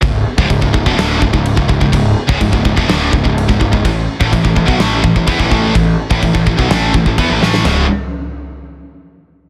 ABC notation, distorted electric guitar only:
X:1
M:4/4
L:1/16
Q:1/4=126
K:C#m
V:1 name="Distorted electric guitar" clef=bass
[C,,G,,]2 z [C,,G,,] [C,,G,,] [C,,G,,] [C,,G,,] [E,,B,,] [=D,,A,,=D,]2 [C,,G,,] [C,,G,,]2 [C,,G,,] [C,,G,,] [C,,G,,] | [C,,G,,]2 z [C,,G,,] [C,,G,,] [C,,G,,] [C,,G,,] [E,,B,,] [=D,,A,,=D,]2 [C,,G,,] [C,,G,,]2 [C,,G,,] [C,,G,,] [C,,G,,] | [A,,E,]2 z [A,,E,] [A,,E,] [A,,E,] [A,,E,] [B,,F,] [A,,E,A,]2 [A,,E,] [A,,E,] [E,B,] [A,,E,] [A,,E,A,]2 | [A,,E,]2 z [A,,E,] [A,,E,] [A,,E,] [A,,E,] [B,,F,] [A,,E,A,]2 [A,,E,] [A,,E,] [E,B,] [A,,E,] [A,,E,A,]2 |
[C,,G,,C,]2 z12 z2 |]